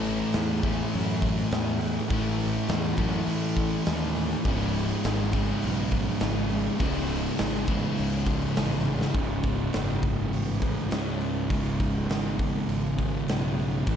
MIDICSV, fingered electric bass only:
0, 0, Header, 1, 2, 480
1, 0, Start_track
1, 0, Key_signature, 4, "minor"
1, 0, Tempo, 588813
1, 1716, Time_signature, 4, 2, 24, 8
1, 11382, End_track
2, 0, Start_track
2, 0, Title_t, "Fingered electric bass"
2, 0, Program_c, 0, 33
2, 0, Note_on_c, 0, 33, 97
2, 176, Note_off_c, 0, 33, 0
2, 279, Note_on_c, 0, 40, 96
2, 658, Note_off_c, 0, 40, 0
2, 768, Note_on_c, 0, 42, 93
2, 1144, Note_off_c, 0, 42, 0
2, 1234, Note_on_c, 0, 40, 96
2, 1615, Note_off_c, 0, 40, 0
2, 1713, Note_on_c, 0, 33, 101
2, 2094, Note_off_c, 0, 33, 0
2, 2188, Note_on_c, 0, 40, 97
2, 2381, Note_off_c, 0, 40, 0
2, 2431, Note_on_c, 0, 42, 88
2, 2622, Note_off_c, 0, 42, 0
2, 2668, Note_on_c, 0, 45, 89
2, 3051, Note_off_c, 0, 45, 0
2, 3152, Note_on_c, 0, 39, 94
2, 3532, Note_off_c, 0, 39, 0
2, 3629, Note_on_c, 0, 25, 94
2, 4010, Note_off_c, 0, 25, 0
2, 4112, Note_on_c, 0, 32, 96
2, 4491, Note_off_c, 0, 32, 0
2, 4593, Note_on_c, 0, 35, 88
2, 4971, Note_off_c, 0, 35, 0
2, 5065, Note_on_c, 0, 32, 91
2, 5446, Note_off_c, 0, 32, 0
2, 5546, Note_on_c, 0, 25, 96
2, 5926, Note_off_c, 0, 25, 0
2, 6031, Note_on_c, 0, 32, 87
2, 6219, Note_off_c, 0, 32, 0
2, 6262, Note_on_c, 0, 33, 87
2, 6453, Note_off_c, 0, 33, 0
2, 6515, Note_on_c, 0, 37, 93
2, 6890, Note_off_c, 0, 37, 0
2, 6988, Note_on_c, 0, 33, 94
2, 7366, Note_off_c, 0, 33, 0
2, 7454, Note_on_c, 0, 25, 96
2, 7906, Note_off_c, 0, 25, 0
2, 7941, Note_on_c, 0, 30, 81
2, 8389, Note_off_c, 0, 30, 0
2, 8422, Note_on_c, 0, 33, 88
2, 8870, Note_off_c, 0, 33, 0
2, 8901, Note_on_c, 0, 37, 99
2, 9350, Note_off_c, 0, 37, 0
2, 9377, Note_on_c, 0, 25, 94
2, 9830, Note_off_c, 0, 25, 0
2, 9859, Note_on_c, 0, 32, 90
2, 10311, Note_off_c, 0, 32, 0
2, 10336, Note_on_c, 0, 32, 95
2, 10792, Note_off_c, 0, 32, 0
2, 10818, Note_on_c, 0, 35, 98
2, 11274, Note_off_c, 0, 35, 0
2, 11309, Note_on_c, 0, 33, 86
2, 11382, Note_off_c, 0, 33, 0
2, 11382, End_track
0, 0, End_of_file